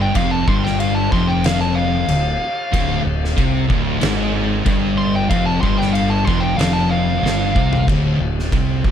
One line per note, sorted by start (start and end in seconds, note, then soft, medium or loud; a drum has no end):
0.00 0.11 G1 medium
0.00 0.15 G2 loud
0.00 0.15 G5 loud
0.15 0.46 F1 medium
0.15 0.47 F2 loud
0.15 0.31 F5 loud
0.15 kick loud
0.15 crash medium
0.31 0.48 A5 loud
0.47 1.08 G1 loud
0.47 1.12 G2 loud
0.47 0.63 C6 loud
0.47 kick loud
0.64 0.80 G5 loud
0.64 snare soft
0.80 0.96 F5 loud
0.80 crash medium
0.94 1.11 A5 loud
1.12 2.05 F1 medium
1.12 2.08 F2 medium
1.12 1.28 C6 medium
1.12 kick loud
1.28 1.45 G5 medium
1.44 1.60 F5 loud
1.44 snare loud
1.44 crash medium
1.61 1.76 A5 medium
1.75 3.01 F5 loud
2.08 2.38 D1 medium
2.08 2.34 D2 medium
2.08 crash medium
2.72 3.03 D1 medium
2.72 3.04 D2 loud
2.72 kick loud
2.72 crash medium
3.04 3.35 D1 medium
3.04 3.31 D2 medium
3.25 snare soft
3.37 3.67 C2 loud
3.37 3.69 C3 loud
3.37 kick loud
3.37 crash medium
3.70 4.00 D1 loud
3.70 4.01 D2 loud
3.70 kick loud
4.01 4.63 G#1 loud
4.01 4.65 G#2 loud
4.01 snare loud
4.01 crash medium
4.65 5.26 G1 medium
4.65 5.29 G2 loud
4.65 kick loud
4.65 crash medium
4.98 5.14 C6 loud
5.16 5.29 G5 loud
5.29 5.60 F1 medium
5.29 5.62 F2 loud
5.29 5.46 F5 loud
5.29 kick loud
5.29 crash medium
5.46 5.61 A5 loud
5.61 6.23 G1 loud
5.61 6.26 G2 loud
5.61 5.78 C6 loud
5.61 kick loud
5.78 5.93 G5 loud
5.78 snare soft
5.94 6.10 F5 medium
5.94 crash medium
6.10 6.25 A5 loud
6.25 6.57 F1 loud
6.25 6.59 F2 medium
6.25 6.42 C6 loud
6.25 kick loud
6.40 6.57 G5 medium
6.57 7.19 F1 medium
6.57 7.23 F2 loud
6.57 6.74 F5 medium
6.57 snare loud
6.57 crash medium
6.73 6.90 A5 loud
6.90 7.85 F5 loud
7.22 7.53 G1 medium
7.22 7.55 G2 loud
7.22 snare medium
7.55 7.86 C2 loud
7.55 7.88 C3 loud
7.55 kick loud
7.73 floor tom medium
7.87 8.18 D1 medium
7.87 8.20 D2 loud
7.87 kick loud
7.87 crash medium
8.18 8.49 D1 medium
8.18 8.47 D2 medium
8.39 snare soft
8.52 8.82 C2 medium
8.52 8.84 C3 loud
8.52 kick loud
8.52 crash medium
8.84 8.91 D1 medium
8.84 8.91 D2 loud
8.84 kick loud